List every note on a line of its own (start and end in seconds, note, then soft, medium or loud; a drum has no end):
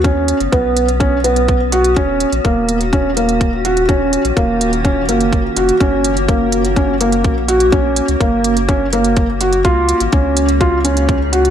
0.00 0.34 D#2 medium
0.00 1.93 B3 medium
0.00 9.61 C#4 medium
0.00 9.61 F#4 medium
0.04 0.37 C#4 medium
0.04 kick medium
0.04 closed hi-hat soft
0.28 closed hi-hat medium
0.40 0.48 F#1 medium
0.40 closed hi-hat soft
0.52 1.98 B1 medium
0.52 0.85 B3 medium
0.52 kick medium
0.52 closed hi-hat soft
0.77 closed hi-hat medium
0.89 closed hi-hat soft
1.00 1.16 C#4 medium
1.00 kick medium
1.00 closed hi-hat soft
1.24 1.57 B3 medium
1.24 closed hi-hat medium
1.36 closed hi-hat soft
1.48 kick medium
1.48 closed hi-hat soft
1.72 1.89 F#4 medium
1.72 closed hi-hat medium
1.84 closed hi-hat soft
1.96 2.26 D#1 medium
1.96 5.77 D#3 medium
1.96 9.61 A#3 medium
1.96 2.29 C#4 medium
1.96 5.77 F4 medium
1.96 kick medium
1.96 closed hi-hat soft
2.20 closed hi-hat medium
2.32 2.40 A#1 medium
2.32 closed hi-hat soft
2.45 4.18 D#1 medium
2.45 2.77 A#3 medium
2.45 kick medium
2.45 closed hi-hat soft
2.69 closed hi-hat medium
2.81 closed hi-hat soft
2.93 3.09 C#4 medium
2.93 kick medium
2.93 closed hi-hat soft
3.17 3.49 A#3 medium
3.17 closed hi-hat medium
3.29 closed hi-hat soft
3.41 kick medium
3.41 closed hi-hat soft
3.65 3.81 F#4 medium
3.65 closed hi-hat medium
3.77 closed hi-hat soft
3.89 4.21 C#4 medium
3.89 kick medium
3.89 closed hi-hat soft
4.13 closed hi-hat medium
4.25 4.32 A#1 medium
4.25 closed hi-hat soft
4.37 5.08 D#1 loud
4.37 4.69 A#3 medium
4.37 kick medium
4.37 closed hi-hat soft
4.61 closed hi-hat medium
4.73 closed hi-hat soft
4.85 5.01 C#4 medium
4.85 kick medium
4.85 closed hi-hat soft
5.09 5.50 F#1 medium
5.09 5.41 A#3 medium
5.09 closed hi-hat medium
5.21 closed hi-hat soft
5.33 kick medium
5.33 closed hi-hat soft
5.57 5.72 F1 loud
5.57 5.73 F#4 medium
5.57 closed hi-hat medium
5.69 closed hi-hat soft
5.80 7.26 F#1 medium
5.80 6.13 C#4 medium
5.80 kick medium
5.80 closed hi-hat soft
6.04 closed hi-hat medium
6.17 closed hi-hat soft
6.28 6.61 A#3 medium
6.28 kick medium
6.28 closed hi-hat soft
6.52 closed hi-hat medium
6.65 closed hi-hat soft
6.76 6.93 C#4 medium
6.76 kick medium
6.76 closed hi-hat soft
7.01 7.33 A#3 medium
7.01 closed hi-hat medium
7.12 closed hi-hat soft
7.24 8.02 A#1 medium
7.24 kick medium
7.24 closed hi-hat soft
7.48 7.65 F#4 medium
7.48 closed hi-hat medium
7.60 closed hi-hat soft
7.72 8.05 C#4 medium
7.72 kick loud
7.72 closed hi-hat soft
7.96 closed hi-hat medium
8.08 8.16 C#2 medium
8.08 closed hi-hat soft
8.21 9.66 F#1 medium
8.21 8.53 A#3 medium
8.21 kick loud
8.21 closed hi-hat soft
8.44 closed hi-hat medium
8.57 closed hi-hat soft
8.69 8.85 C#4 medium
8.69 kick medium
8.69 closed hi-hat soft
8.93 9.26 A#3 medium
8.93 closed hi-hat medium
9.04 closed hi-hat soft
9.17 kick medium
9.17 closed hi-hat soft
9.41 9.57 F#4 medium
9.41 closed hi-hat medium
9.53 closed hi-hat soft
9.65 9.94 C#2 loud
9.65 11.50 C#3 medium
9.65 11.50 C#4 medium
9.65 11.50 D#4 medium
9.65 11.50 F4 medium
9.65 9.97 F4 medium
9.65 11.50 G#4 medium
9.65 kick medium
9.65 closed hi-hat soft
9.89 closed hi-hat medium
10.00 10.08 G#1 medium
10.00 closed hi-hat soft
10.12 11.50 C#2 loud
10.12 10.45 C#4 medium
10.12 kick loud
10.12 closed hi-hat soft
10.37 closed hi-hat medium
10.49 closed hi-hat soft
10.60 10.77 F4 medium
10.60 kick medium
10.60 closed hi-hat soft
10.84 11.17 C#4 medium
10.84 closed hi-hat medium
10.97 closed hi-hat soft
11.09 kick loud
11.09 closed hi-hat soft
11.33 11.49 F#4 medium
11.33 closed hi-hat medium
11.45 closed hi-hat soft